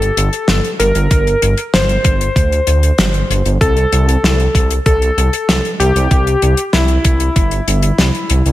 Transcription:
0.00 0.10 G1 medium
0.00 0.67 A4 medium
0.00 closed hi-hat soft
0.17 0.29 G1 loud
0.17 closed hi-hat loud
0.33 closed hi-hat medium
0.48 0.61 G1 medium
0.48 snare loud
0.48 closed hi-hat medium
0.64 closed hi-hat soft
0.79 0.92 G1 loud
0.79 1.61 A#4 medium
0.79 closed hi-hat loud
0.95 1.07 G1 medium
0.95 closed hi-hat medium
1.11 1.35 G1 medium
1.11 kick loud
1.11 closed hi-hat medium
1.27 closed hi-hat soft
1.42 1.54 G1 medium
1.42 closed hi-hat medium
1.57 closed hi-hat medium
1.74 1.98 G1 medium
1.74 3.49 C5 medium
1.74 snare loud
1.74 closed hi-hat medium
1.89 closed hi-hat soft
2.04 2.29 G1 medium
2.04 kick loud
2.04 closed hi-hat loud
2.21 closed hi-hat medium
2.36 2.60 D2 medium
2.36 kick loud
2.36 closed hi-hat medium
2.52 closed hi-hat soft
2.67 2.91 D2 loud
2.67 closed hi-hat medium
2.83 closed hi-hat medium
2.98 3.23 G1 medium
2.98 snare loud
2.98 closed hi-hat medium
3.14 closed hi-hat soft
3.30 3.42 G1 medium
3.30 closed hi-hat medium
3.45 3.58 G1 medium
3.45 closed hi-hat medium
3.61 3.85 C2 loud
3.61 4.74 A4 loud
3.61 kick loud
3.61 closed hi-hat medium
3.77 closed hi-hat soft
3.92 4.17 C2 loud
3.92 closed hi-hat medium
4.09 closed hi-hat medium
4.23 4.48 C2 loud
4.23 snare loud
4.23 closed hi-hat medium
4.40 closed hi-hat soft
4.55 4.79 C2 medium
4.55 kick loud
4.55 closed hi-hat medium
4.71 closed hi-hat medium
4.86 5.10 C2 medium
4.86 5.67 A4 medium
4.86 kick loud
4.86 closed hi-hat medium
5.02 closed hi-hat soft
5.17 5.29 C2 loud
5.17 closed hi-hat medium
5.33 closed hi-hat medium
5.48 5.61 C2 medium
5.48 snare loud
5.48 closed hi-hat medium
5.65 closed hi-hat soft
5.80 5.92 C2 loud
5.80 6.61 G4 medium
5.80 closed hi-hat medium
5.95 6.08 C2 medium
5.95 closed hi-hat medium
6.11 6.35 C2 medium
6.11 kick loud
6.11 closed hi-hat medium
6.27 closed hi-hat soft
6.42 6.54 C2 medium
6.42 closed hi-hat medium
6.57 closed hi-hat medium
6.73 6.98 C2 medium
6.73 8.48 E4 medium
6.73 snare loud
6.73 closed hi-hat medium
6.88 closed hi-hat soft
7.04 7.29 C2 medium
7.04 kick loud
7.04 closed hi-hat loud
7.20 closed hi-hat medium
7.36 7.60 G1 medium
7.36 kick loud
7.36 closed hi-hat medium
7.51 closed hi-hat soft
7.67 7.92 G1 medium
7.67 closed hi-hat medium
7.82 closed hi-hat medium
7.98 8.11 C2 medium
7.98 snare loud
7.98 closed hi-hat medium
8.15 closed hi-hat soft
8.30 8.42 C2 medium
8.30 closed hi-hat loud
8.46 8.52 C2 medium
8.46 closed hi-hat medium

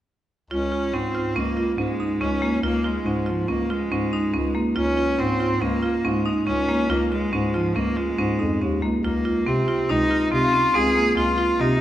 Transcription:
0.50 0.90 C#2 medium
0.50 0.95 C#4 medium
0.50 0.68 F4 medium
0.72 0.89 F4 medium
0.93 1.33 G#2 medium
0.93 1.37 C4 medium
0.93 1.10 C#4 medium
1.15 1.31 F4 medium
1.36 1.76 C#2 medium
1.36 1.77 A#3 medium
1.36 1.53 C#4 medium
1.57 1.74 F4 medium
1.78 1.98 G#2 medium
1.78 2.23 G#3 medium
1.78 1.95 C#4 medium
2.00 2.17 D#4 medium
2.20 2.60 C#2 medium
2.20 2.38 C#4 medium
2.20 2.63 C#4 medium
2.42 2.59 A#3 medium
2.63 3.03 C#2 medium
2.63 2.87 A#3 medium
2.63 2.80 F4 medium
2.84 3.30 G#3 medium
2.84 3.02 F4 medium
3.05 3.45 G#2 medium
3.05 3.23 C#4 medium
3.26 3.51 F3 medium
3.26 3.44 F4 medium
3.48 3.88 C#2 medium
3.48 3.72 A#3 medium
3.48 3.65 C#4 medium
3.70 4.55 G#3 medium
3.70 3.87 F4 medium
3.91 4.11 G#2 medium
3.91 4.08 C#4 medium
4.13 4.30 D#4 medium
4.34 4.74 C#2 medium
4.34 4.51 C#4 medium
4.55 4.72 A#3 medium
4.76 5.16 C#2 medium
4.76 5.21 C#4 medium
4.76 4.93 F4 medium
4.97 5.14 F4 medium
5.19 5.59 G#2 medium
5.19 5.64 C4 medium
5.19 5.36 C#4 medium
5.40 5.57 F4 medium
5.61 6.01 C#2 medium
5.61 6.06 A#3 medium
5.61 5.78 C#4 medium
5.83 6.00 F4 medium
6.05 6.24 G#2 medium
6.05 6.47 G#3 medium
6.05 6.21 C#4 medium
6.26 6.43 D#4 medium
6.47 6.86 C#2 medium
6.47 6.64 C#4 medium
6.47 6.91 C#4 medium
6.69 6.85 A#3 medium
6.89 7.29 C#2 medium
6.89 7.11 A#3 medium
6.89 7.07 F4 medium
7.12 7.56 G#3 medium
7.12 7.28 F4 medium
7.33 7.72 G#2 medium
7.33 7.49 C#4 medium
7.54 7.77 F3 medium
7.54 7.71 F4 medium
7.76 8.15 C#2 medium
7.76 7.98 A#3 medium
7.76 7.92 C#4 medium
7.96 8.82 G#3 medium
7.96 8.14 F4 medium
8.18 8.38 G#2 medium
8.18 8.35 C#4 medium
8.39 8.59 F2 medium
8.39 8.56 D#4 medium
8.61 8.80 D#2 medium
8.61 8.78 C#4 medium
8.82 9.02 C#2 medium
8.82 8.99 A#3 medium
9.03 9.42 C#2 medium
9.03 9.49 A#3 medium
9.03 9.21 F4 medium
9.25 9.42 F4 medium
9.46 9.86 C3 medium
9.46 9.63 C4 medium
9.46 9.92 C4 medium
9.68 9.85 F4 medium
9.89 10.29 C#2 medium
9.89 10.06 D#4 medium
9.89 10.32 D#4 medium
10.11 10.27 F4 medium
10.31 10.52 C3 medium
10.31 10.48 C4 medium
10.31 10.77 F4 medium
10.53 10.70 C#4 medium
10.74 11.14 C#2 medium
10.74 10.91 C4 medium
10.74 11.17 G#4 medium
10.95 11.12 A#3 medium
11.16 11.56 C#2 medium
11.16 11.34 F4 medium
11.16 11.62 F4 medium
11.38 11.55 F4 medium
11.60 11.81 C3 medium
11.60 11.76 C4 medium
11.60 11.81 D#4 medium

